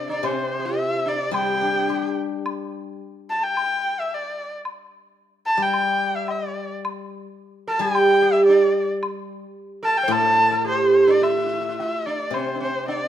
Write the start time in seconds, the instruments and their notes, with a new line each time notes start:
Already playing: guzheng C3, erhu D5
0.09 sitar D4, erhu D5
0.23 guzheng C3, sitar C4, erhu C5, high woodblock
0.59 sitar G4
0.65 sitar E4, erhu E5
1.06 sitar D4, erhu D5
1.31 guzheng G3, sitar G4, high woodblock
1.36 erhu G5
1.41 sitar G4
1.49 sitar G4
1.56 sitar G4
1.61 guzheng D4, sitar G4
1.73 sitar G4
1.79 sitar G4
1.87 sitar G4, guzheng G4, high woodblock
1.94 sitar G4
2.02 sitar G4
2.46 high woodblock
3.30 erhu A5
3.44 erhu G5
3.57 high woodblock
4.00 erhu E5
4.14 erhu D5
4.65 high woodblock
5.46 erhu A5
5.57 guzheng G3
5.62 erhu G5
5.73 high woodblock
6.16 erhu E5
6.28 erhu D5, high woodblock, low woodblock
6.85 high woodblock
7.67 sitar A4, erhu A5
7.79 guzheng G3, sitar G4, erhu G5
7.95 high woodblock
8.22 sitar G4
8.33 erhu E5
8.46 sitar D4, erhu D5
9.03 high woodblock
9.83 sitar A4, erhu A5
9.98 erhu G5
10.03 sitar C5
10.08 guzheng A2, sitar A4, erhu A5, high woodblock
10.51 sitar A4
10.64 sitar G4
10.69 erhu C5
11.07 sitar D4, erhu D5
11.22 sitar E4, erhu E5, high woodblock
11.29 sitar E4
11.38 sitar E4
11.46 sitar E4
11.54 sitar E4
11.61 sitar E4
11.69 sitar E4
11.79 sitar E4, erhu E5, low woodblock
12.06 sitar D4, erhu D5
12.30 guzheng C3, sitar C4, erhu C5, high woodblock
12.55 sitar D4
12.60 sitar C4, erhu C5
12.88 sitar D4, erhu D5, low woodblock